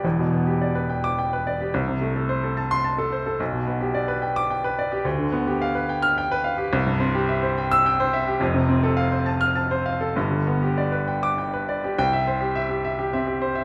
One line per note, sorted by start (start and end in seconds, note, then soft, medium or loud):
0.04 1.69 E1 medium
0.04 1.70 E2 medium
0.19 0.42 B2 medium
0.33 0.56 B3 medium
0.47 0.70 G4 medium
0.61 0.84 D5 medium
0.75 0.98 B4 medium
0.89 1.12 G5 medium
1.04 1.26 D6 medium
1.19 1.40 G5 medium
1.33 1.54 B4 medium
1.47 1.68 D5 medium
1.61 1.74 G4 medium
1.74 3.36 C2 medium
1.88 2.10 C3 medium
2.01 2.24 A3 medium
2.16 2.38 A4 medium
2.29 2.52 C5 medium
2.43 2.66 A4 medium
2.57 2.79 A5 medium
2.71 2.93 C6 loud
2.84 3.07 A5 medium
2.98 3.21 A4 medium
3.12 3.34 C5 medium
3.26 3.40 A4 medium
3.40 5.01 B1 medium
3.53 3.75 B2 medium
3.67 3.89 B3 medium
3.81 4.03 G4 medium
3.94 4.17 D5 medium
4.08 4.30 B4 medium
4.22 4.44 G5 medium
4.36 4.58 D6 medium
4.50 4.72 G5 medium
4.64 4.86 B4 medium
4.79 5.00 D5 medium
4.92 5.06 G4 medium
5.05 6.68 D2 medium
5.18 5.41 D3 medium
5.32 5.55 B3 medium
5.47 5.70 G4 medium
5.62 5.84 F5 medium
5.75 5.98 B4 medium
5.89 6.12 G5 medium
6.02 6.25 F6 loud
6.18 6.40 G5 medium
6.31 6.53 B4 medium
6.44 6.67 F5 medium
6.58 6.72 G4 medium
6.73 8.37 C2 medium
6.87 7.09 G2 medium
7.00 7.23 C4 medium
7.14 7.37 G4 medium
7.29 7.51 E5 medium
7.43 7.65 C5 medium
7.58 7.80 G5 medium
7.71 7.94 E6 loud
7.86 8.08 G5 medium
8.00 8.22 C5 medium
8.13 8.35 E5 medium
8.27 8.41 G4 medium
8.40 10.11 F1 medium
8.40 10.12 F2 medium
8.54 8.77 C3 medium
8.69 8.91 C4 medium
8.83 9.06 A4 medium
8.97 9.20 F5 medium
9.12 9.35 C5 medium
9.26 9.50 A5 medium
9.41 9.64 F6 loud
9.55 9.79 A5 medium
9.71 9.95 C5 medium
9.86 10.10 F5 medium
10.01 10.16 A4 medium
10.16 11.95 G1 medium
10.16 11.95 G2 medium
10.31 10.56 D3 medium
10.47 10.71 B3 medium
10.63 10.87 G4 medium
10.78 11.02 D5 medium
10.92 11.17 B4 medium
11.08 11.32 G5 medium
11.23 11.47 D6 medium
11.38 11.63 G5 medium
11.54 11.78 B4 medium
11.69 11.93 D5 medium
11.84 11.99 G4 medium
11.98 13.64 C2 medium
11.98 12.22 G5 medium
12.13 12.36 E5 medium
12.27 12.50 C5 medium
12.41 12.64 G4 medium
12.55 12.78 E5 medium
12.70 12.93 G4 medium
12.85 13.07 E5 medium
12.99 13.21 G4 medium
13.13 13.36 C4 medium
13.13 13.36 E5 medium
13.27 13.50 G4 medium
13.42 13.64 C5 medium
13.55 13.64 E5 medium